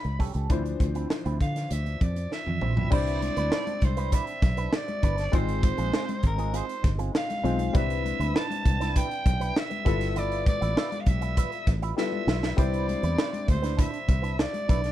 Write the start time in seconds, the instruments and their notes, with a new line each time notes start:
Already playing: grand piano G3 C#4 E4 A4, soprano saxophone B5
0.04 fingered electric bass C#2, muted clean electric guitar stroke, closed hi-hat
0.19 fingered electric bass C2, clean electric guitar C#4 G4 A4, kick, open hi-hat
0.34 fingered electric bass C#2, clean electric guitar C#4 G4 A4, closed hi-hat
0.49 fingered electric bass D2, grand piano E3 F3 D4 C5, clean electric guitar F3 C4 E4, kick, closed hi-hat
0.65 muted clean electric guitar stroke, closed hi-hat
0.80 fingered electric bass D2, muted clean electric guitar stroke, kick, closed hi-hat
0.95 clean electric guitar F3 C4 E4, closed hi-hat
1.10 snare
1.25 fingered electric bass D2, clean electric guitar F3 C4 E4, closed hi-hat
1.40 fingered electric bass D3, soprano saxophone F5, kick, closed hi-hat
1.56 muted clean electric guitar stroke, snare, closed hi-hat
1.71 fingered electric bass D2, soprano saxophone E5, muted clean electric guitar stroke, closed hi-hat
1.86 muted clean electric guitar stroke, closed hi-hat
2.01 fingered electric bass F2, soprano saxophone D5, kick, closed hi-hat
2.16 muted clean electric guitar stroke, closed hi-hat
2.31 soprano saxophone E5, muted clean electric guitar stroke, snare
2.46 fingered electric bass F2, muted clean electric guitar stroke, high tom
2.61 fingered electric bass A#1, clean electric guitar F3 C4 E4, mid tom
2.76 fingered electric bass B1, clean electric guitar F3 C4 E4, floor tom
2.90 fingered electric bass C2, grand piano G3 C4 D4 E4 C5, clean electric guitar D4 E4 B4, soprano saxophone D5, kick, crash
3.07 closed hi-hat
3.22 muted clean electric guitar stroke, closed hi-hat, muted conga, high conga
3.37 fingered electric bass D2, clean electric guitar D4 E4 B4, closed hi-hat
3.51 clean electric guitar D4 E4 B4, snare
3.67 muted clean electric guitar stroke, closed hi-hat, high conga
3.81 fingered electric bass C2, soprano saxophone C5, muted clean electric guitar stroke, kick, closed hi-hat, muted conga, high conga, low conga
3.97 clean electric guitar D4 E4 B4, closed hi-hat
4.12 clean electric guitar D4 E4 B4, soprano saxophone E5, kick, closed hi-hat
4.27 muted clean electric guitar stroke, closed hi-hat
4.42 fingered electric bass B1, muted clean electric guitar stroke, kick, snare, closed hi-hat, muted conga
4.57 clean electric guitar D4 E4 B4, closed hi-hat
4.72 soprano saxophone D5, muted clean electric guitar stroke, snare, muted conga
4.88 muted clean electric guitar stroke, closed hi-hat, high conga
5.03 fingered electric bass G1, clean electric guitar D4 E4 B4, kick, closed hi-hat, muted conga, low conga
5.18 muted clean electric guitar stroke, snare, closed hi-hat
5.32 fingered electric bass G#1, grand piano G#3 C4 D#4 F4 C5, clean electric guitar C4 F4 G#4, soprano saxophone C5, kick, closed hi-hat, muted conga
5.48 closed hi-hat
5.62 muted clean electric guitar stroke, kick, closed hi-hat, high conga
5.77 fingered electric bass A#1, clean electric guitar C4 F4 G#4, closed hi-hat
5.92 clean electric guitar C4 F4 G#4, snare
6.07 muted clean electric guitar stroke, closed hi-hat, high conga
6.23 fingered electric bass G#1, soprano saxophone A#4, muted clean electric guitar stroke, kick, closed hi-hat, muted conga, high conga, low conga
6.38 clean electric guitar C4 F4 G#4, closed hi-hat
6.53 clean electric guitar C4 F4 G#4, soprano saxophone C5, closed hi-hat, muted conga
6.67 muted clean electric guitar stroke, closed hi-hat
6.83 fingered electric bass G1, muted clean electric guitar stroke, kick, snare, closed hi-hat, muted conga
6.98 clean electric guitar C4 F4 G#4, closed hi-hat
7.13 soprano saxophone F5, muted clean electric guitar stroke, snare
7.28 muted clean electric guitar stroke, snare, closed hi-hat, high conga
7.43 fingered electric bass B1, grand piano G#3 C4 D#4 F4 C5, clean electric guitar C4 F4 G#4, closed hi-hat, muted conga, low conga
7.59 clean electric guitar C4 F4 G#4, closed hi-hat
7.73 fingered electric bass C2, grand piano G3 C4 D4 E4 B4, clean electric guitar D4 E4 B4, soprano saxophone E5, kick, closed hi-hat, muted conga
7.90 closed hi-hat
8.04 muted clean electric guitar stroke, closed hi-hat, muted conga, high conga
8.19 fingered electric bass D2, clean electric guitar D4 E4 B4, closed hi-hat
8.34 clean electric guitar D4 E4 B4, soprano saxophone A5, snare, muted conga
8.50 muted clean electric guitar stroke, closed hi-hat, high conga
8.65 fingered electric bass C2, muted clean electric guitar stroke, kick, closed hi-hat, muted conga, high conga, low conga
8.80 clean electric guitar D4 E4 B4, snare, closed hi-hat
8.95 clean electric guitar D4 E4 B4, soprano saxophone G5, kick, closed hi-hat, muted conga
9.11 muted clean electric guitar stroke, closed hi-hat
9.26 fingered electric bass B1, muted clean electric guitar stroke, kick, closed hi-hat, muted conga
9.40 clean electric guitar D4 E4 B4, closed hi-hat
9.56 soprano saxophone E5, snare, muted conga
9.70 muted clean electric guitar stroke, closed hi-hat, high conga
9.85 fingered electric bass G1, grand piano G3 B3 E4 F4 A4, clean electric guitar F4 B4 E5, kick, closed hi-hat, muted conga, low conga
10.01 muted clean electric guitar stroke, snare, closed hi-hat
10.16 clean electric guitar F4 B4 E5, soprano saxophone D5, closed hi-hat, low conga
10.32 closed hi-hat
10.46 soprano saxophone D5, muted clean electric guitar stroke, kick, closed hi-hat, muted conga, high conga
10.61 fingered electric bass A1, clean electric guitar F4 B4 E5, closed hi-hat
10.76 clean electric guitar F4 B4 E5, snare, muted conga
10.92 muted clean electric guitar stroke, closed hi-hat, high conga
11.00 soprano saxophone F5
11.06 fingered electric bass B1, soprano saxophone E5, muted clean electric guitar stroke, kick, closed hi-hat, muted conga, high conga, low conga
11.21 clean electric guitar F4 B4 E5, closed hi-hat
11.37 clean electric guitar F4 B4 E5, kick, closed hi-hat
11.52 muted clean electric guitar stroke, closed hi-hat
11.67 fingered electric bass A1, muted clean electric guitar stroke, kick, snare, closed hi-hat, muted conga
11.82 clean electric guitar F4 B4 E5, closed hi-hat
11.96 grand piano G3 B3 E4 F4 A4, soprano saxophone E5, muted clean electric guitar stroke, snare
12.12 muted clean electric guitar stroke, high conga
12.27 fingered electric bass B1, clean electric guitar F4 B4 E5, snare, high conga, low conga
12.43 muted clean electric guitar stroke, snare
12.57 fingered electric bass C2, grand piano G3 C4 D4 E4 C5, clean electric guitar D4 E4 B4, soprano saxophone D5, kick, closed hi-hat, muted conga
12.74 closed hi-hat
12.89 closed hi-hat, high conga
13.03 fingered electric bass E2, clean electric guitar D4 E4 B4, closed hi-hat
13.17 clean electric guitar D4 E4 B4, snare, muted conga
13.33 muted clean electric guitar stroke, closed hi-hat, high conga
13.47 fingered electric bass D2, soprano saxophone C5, muted clean electric guitar stroke, kick, closed hi-hat, muted conga, high conga, low conga
13.62 clean electric guitar D4 E4 B4, snare, closed hi-hat
13.77 clean electric guitar D4 E4 B4, soprano saxophone E5, kick, closed hi-hat, muted conga
13.93 muted clean electric guitar stroke, closed hi-hat
14.07 fingered electric bass C2, muted clean electric guitar stroke, kick, closed hi-hat
14.22 clean electric guitar D4 E4 B4, closed hi-hat
14.38 soprano saxophone D5, muted clean electric guitar stroke, snare, muted conga
14.53 muted clean electric guitar stroke, closed hi-hat, high conga
14.68 fingered electric bass B1, clean electric guitar D4 E4 B4, kick, closed hi-hat, low conga
14.83 muted clean electric guitar stroke, snare, closed hi-hat